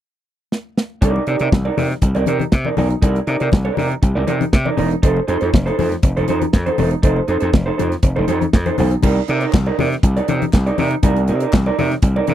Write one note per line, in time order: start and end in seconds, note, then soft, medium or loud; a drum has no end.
0.52 snare medium
0.78 snare medium
1.01 1.18 C2 medium
1.01 1.22 D#4 medium
1.01 1.22 A#4 medium
1.01 1.23 D5 medium
1.01 kick loud
1.01 closed hi-hat medium
1.01 muted conga soft
1.16 muted conga soft
1.27 1.35 C3 medium
1.27 1.40 D#4 medium
1.27 1.39 A#4 medium
1.27 1.39 D5 medium
1.27 closed hi-hat soft
1.39 1.48 C3 medium
1.39 1.50 D#4 soft
1.39 1.51 A#4 medium
1.39 1.52 D5 medium
1.39 closed hi-hat soft
1.52 1.68 C2 medium
1.52 muted clean electric guitar stroke soft
1.52 kick loud
1.52 snare loud
1.52 muted conga soft
1.52 high conga medium
1.65 1.76 D#4 medium
1.65 1.76 A#4 medium
1.65 1.77 D5 medium
1.65 muted conga soft
1.77 1.93 C3 medium
1.77 1.90 D#4 medium
1.77 1.90 A#4 medium
1.77 1.89 D5 medium
1.77 open hi-hat medium
1.77 high conga medium
1.77 low conga medium
1.90 muted clean electric guitar stroke soft
1.90 snare soft
1.90 closed hi-hat soft
2.01 2.10 C2 medium
2.01 muted clean electric guitar stroke soft
2.01 kick loud
2.01 closed hi-hat medium
2.01 muted conga soft
2.15 2.23 C2 medium
2.15 2.26 D#4 medium
2.15 2.26 A#4 medium
2.15 2.27 D5 medium
2.15 closed hi-hat soft
2.15 muted conga soft
2.26 2.43 C3 medium
2.26 2.43 D#4 medium
2.26 2.40 A#4 medium
2.26 2.39 D5 medium
2.26 closed hi-hat medium
2.26 high conga medium
2.40 muted clean electric guitar stroke soft
2.40 closed hi-hat soft
2.40 high conga medium
2.52 2.68 C3 loud
2.52 muted clean electric guitar stroke soft
2.52 kick medium
2.52 snare loud
2.52 muted conga soft
2.65 2.76 D#4 soft
2.65 2.76 A#4 soft
2.65 2.77 D5 medium
2.65 muted conga soft
2.65 high conga medium
2.77 2.93 B1 medium
2.77 2.94 D#4 medium
2.77 2.90 A#4 medium
2.77 2.89 D5 medium
2.77 open hi-hat medium
2.77 high conga medium
2.77 low conga medium
2.90 muted clean electric guitar stroke soft
2.90 closed hi-hat soft
3.02 3.18 C2 loud
3.02 3.18 D#4 medium
3.02 3.19 A#4 medium
3.02 3.19 D5 medium
3.02 kick loud
3.02 closed hi-hat medium
3.15 closed hi-hat soft
3.15 muted conga soft
3.27 3.36 C3 loud
3.27 3.40 D#4 medium
3.27 3.40 A#4 medium
3.27 3.39 D5 medium
3.27 closed hi-hat soft
3.40 3.48 C3 medium
3.40 3.51 D#4 soft
3.40 3.51 A#4 medium
3.40 3.52 D5 medium
3.40 closed hi-hat soft
3.52 3.69 C2 medium
3.52 kick loud
3.52 snare loud
3.52 muted conga soft
3.52 high conga medium
3.65 3.76 D#4 medium
3.65 3.77 A#4 medium
3.65 3.77 D5 medium
3.65 muted conga soft
3.77 3.93 C3 medium
3.77 3.90 D#4 medium
3.77 3.90 A#4 medium
3.77 3.89 D5 medium
3.77 open hi-hat medium
3.77 high conga medium
3.77 low conga medium
3.90 muted clean electric guitar stroke soft
3.90 closed hi-hat soft
4.02 4.11 C2 loud
4.02 muted clean electric guitar stroke soft
4.02 kick loud
4.02 closed hi-hat medium
4.15 4.24 C2 medium
4.15 4.26 D#4 soft
4.15 4.26 A#4 medium
4.15 4.27 D5 medium
4.27 4.44 C3 medium
4.27 4.44 D#4 medium
4.27 4.40 A#4 medium
4.27 4.39 D5 loud
4.27 closed hi-hat medium
4.27 high conga medium
4.41 muted clean electric guitar stroke soft
4.41 closed hi-hat soft
4.41 high conga medium
4.53 4.69 C3 loud
4.53 muted clean electric guitar stroke soft
4.53 kick loud
4.53 snare loud
4.65 4.76 D#4 soft
4.65 4.76 A#4 medium
4.65 4.77 D5 medium
4.65 high conga medium
4.77 4.94 E1 medium
4.77 4.94 D#4 medium
4.77 4.91 A#4 loud
4.77 4.90 D5 medium
4.77 open hi-hat medium
4.77 high conga medium
4.77 low conga medium
4.91 muted clean electric guitar stroke medium
4.91 closed hi-hat soft
5.02 5.19 F1 medium
5.02 5.19 D#4 medium
5.02 5.19 A4 medium
5.02 5.19 C5 medium
5.02 kick loud
5.02 closed hi-hat medium
5.17 muted conga soft
5.28 5.36 F2 loud
5.28 5.41 D#4 medium
5.28 5.40 A4 medium
5.28 5.40 C5 medium
5.28 closed hi-hat soft
5.41 5.49 F2 medium
5.41 5.52 D#4 soft
5.41 5.52 A4 medium
5.41 5.53 C5 medium
5.41 closed hi-hat soft
5.53 5.69 F1 medium
5.53 muted clean electric guitar stroke soft
5.53 kick loud
5.53 snare loud
5.53 muted conga soft
5.53 high conga medium
5.66 5.76 D#4 medium
5.66 5.77 A4 medium
5.66 5.78 C5 medium
5.66 closed hi-hat soft
5.66 muted conga soft
5.78 5.94 F2 medium
5.78 5.91 D#4 medium
5.78 5.91 A4 medium
5.78 5.90 C5 medium
5.78 open hi-hat medium
5.78 high conga medium
5.78 low conga medium
5.91 muted clean electric guitar stroke soft
5.91 snare soft
5.91 closed hi-hat soft
6.03 6.12 F1 loud
6.03 muted clean electric guitar stroke soft
6.03 kick loud
6.03 closed hi-hat medium
6.03 muted conga soft
6.17 6.25 F1 medium
6.17 6.27 D#4 soft
6.17 6.27 A4 medium
6.17 6.28 C5 medium
6.17 closed hi-hat soft
6.28 6.44 F2 medium
6.28 6.44 D#4 medium
6.28 6.41 A4 medium
6.28 6.40 C5 medium
6.28 closed hi-hat medium
6.28 high conga medium
6.41 muted clean electric guitar stroke soft
6.41 closed hi-hat soft
6.41 high conga medium
6.53 6.69 F2 loud
6.53 muted clean electric guitar stroke soft
6.53 kick medium
6.53 snare loud
6.66 6.77 D#4 soft
6.66 6.78 A4 soft
6.66 6.78 C5 medium
6.66 closed hi-hat soft
6.66 high conga medium
6.78 6.94 E1 medium
6.78 6.94 D#4 medium
6.78 6.91 A4 medium
6.78 6.90 C5 medium
6.78 open hi-hat medium
6.78 high conga medium
6.78 low conga medium
6.91 muted clean electric guitar stroke soft
6.91 closed hi-hat soft
7.03 7.19 F1 medium
7.03 7.19 D#4 medium
7.03 7.19 A4 medium
7.03 7.20 C5 medium
7.03 kick medium
7.03 closed hi-hat medium
7.16 muted conga soft
7.28 7.37 F2 medium
7.28 7.40 D#4 medium
7.28 7.40 A4 medium
7.28 7.39 C5 medium
7.28 closed hi-hat medium
7.40 7.49 F2 medium
7.40 7.51 D#4 soft
7.40 7.52 A4 medium
7.40 7.52 C5 medium
7.40 closed hi-hat soft
7.53 7.69 F1 medium
7.53 muted clean electric guitar stroke soft
7.53 kick loud
7.53 snare loud
7.53 high conga medium
7.66 7.76 D#4 medium
7.66 7.77 A4 medium
7.66 7.77 C5 medium
7.77 7.94 F2 medium
7.77 7.91 D#4 medium
7.77 7.91 A4 medium
7.77 7.90 C5 medium
7.77 closed hi-hat medium
7.77 high conga medium
7.77 low conga medium
7.91 muted clean electric guitar stroke soft
7.91 snare soft
7.91 closed hi-hat soft
8.03 8.11 F1 medium
8.03 muted clean electric guitar stroke soft
8.03 kick loud
8.03 closed hi-hat medium
8.03 muted conga soft
8.16 8.25 F1 medium
8.16 8.26 D#4 soft
8.16 8.27 A4 medium
8.16 8.28 C5 medium
8.16 muted conga soft
8.28 8.45 F2 loud
8.28 8.44 D#4 medium
8.28 8.41 A4 medium
8.28 8.40 C5 medium
8.28 closed hi-hat medium
8.28 high conga medium
8.41 muted clean electric guitar stroke soft
8.41 closed hi-hat soft
8.41 high conga medium
8.53 8.69 F2 loud
8.53 muted clean electric guitar stroke soft
8.53 kick loud
8.53 snare loud
8.53 muted conga soft
8.66 8.77 D#4 soft
8.66 8.77 A4 soft
8.66 8.78 C5 medium
8.66 closed hi-hat soft
8.66 muted conga soft
8.66 high conga medium
8.78 8.95 B1 medium
8.78 8.94 D#4 medium
8.78 8.91 A4 medium
8.78 8.90 C5 medium
8.78 open hi-hat medium
8.78 high conga medium
8.78 low conga medium
8.91 muted clean electric guitar stroke soft
8.91 closed hi-hat soft
9.03 9.19 C2 loud
9.03 9.19 D#4 medium
9.03 9.20 A#4 medium
9.03 9.20 D5 medium
9.03 kick loud
9.03 crash medium
9.03 muted conga soft
9.03 low conga medium
9.16 muted conga soft
9.28 9.44 C3 loud
9.28 9.41 D#4 medium
9.28 9.41 A#4 medium
9.28 9.40 D5 medium
9.28 closed hi-hat soft
9.41 9.52 D#4 medium
9.41 9.53 A#4 medium
9.41 9.53 D5 medium
9.41 closed hi-hat soft
9.53 9.69 C2 medium
9.53 muted clean electric guitar stroke soft
9.53 kick loud
9.53 snare loud
9.53 clap loud
9.53 muted conga soft
9.53 high conga medium
9.66 9.77 D#4 medium
9.66 9.77 A#4 medium
9.66 9.78 D5 medium
9.66 muted conga soft
9.78 9.95 C3 loud
9.78 9.91 D#4 medium
9.78 9.91 A#4 medium
9.78 9.90 D5 medium
9.78 open hi-hat medium
9.78 high conga medium
9.78 low conga medium
9.91 muted clean electric guitar stroke soft
9.91 snare soft
9.91 closed hi-hat soft
10.03 10.19 C2 loud
10.03 muted clean electric guitar stroke soft
10.03 kick loud
10.03 closed hi-hat medium
10.03 muted conga soft
10.16 10.27 D#4 soft
10.16 10.28 A#4 medium
10.16 10.28 D5 medium
10.16 closed hi-hat soft
10.16 muted conga soft
10.28 10.44 C3 medium
10.28 10.44 D#4 medium
10.28 10.41 A#4 medium
10.28 10.40 D5 medium
10.28 closed hi-hat medium
10.28 high conga medium
10.42 muted clean electric guitar stroke soft
10.42 closed hi-hat soft
10.42 high conga medium
10.53 10.69 C2 loud
10.53 muted clean electric guitar stroke soft
10.53 kick loud
10.53 snare medium
10.53 clap medium
10.53 muted conga soft
10.66 10.77 D#4 medium
10.66 10.78 A#4 medium
10.66 10.78 D5 medium
10.66 closed hi-hat soft
10.78 10.94 C3 medium
10.78 10.94 D#4 medium
10.78 10.91 A#4 medium
10.78 10.90 D5 medium
10.78 open hi-hat medium
10.78 high conga medium
10.78 low conga medium
10.91 muted clean electric guitar stroke soft
10.91 closed hi-hat soft
11.03 11.30 C2 medium
11.03 11.20 D#4 medium
11.03 11.20 A#4 medium
11.03 11.20 D5 medium
11.03 kick loud
11.03 closed hi-hat medium
11.03 muted conga soft
11.03 low conga medium
11.16 closed hi-hat soft
11.16 muted conga soft
11.28 11.44 C3 medium
11.28 11.41 D#4 medium
11.28 11.41 A#4 medium
11.28 11.41 D5 medium
11.28 closed hi-hat medium
11.40 11.53 D#4 soft
11.40 11.53 A#4 medium
11.40 11.53 D5 medium
11.40 closed hi-hat soft
11.53 11.69 C2 loud
11.53 kick loud
11.53 snare loud
11.53 clap loud
11.53 high conga medium
11.66 11.77 D#4 medium
11.66 11.78 A#4 medium
11.66 11.78 D5 medium
11.66 muted conga soft
11.78 11.94 C3 medium
11.78 11.91 D#4 medium
11.78 11.91 A#4 medium
11.78 11.90 D5 medium
11.78 open hi-hat medium
11.78 high conga medium
11.78 low conga medium
11.91 muted clean electric guitar stroke soft
11.91 snare soft
11.91 closed hi-hat soft
12.02 12.19 C2 medium
12.02 muted clean electric guitar stroke soft
12.02 kick loud
12.02 closed hi-hat medium
12.02 muted conga soft
12.16 12.26 D#4 soft
12.16 12.27 A#4 medium
12.16 12.28 D5 medium
12.16 muted conga soft
12.27 12.34 C3 medium
12.27 12.34 D#4 medium
12.27 12.34 A#4 loud
12.27 12.34 D5 medium
12.27 closed hi-hat medium
12.27 high conga medium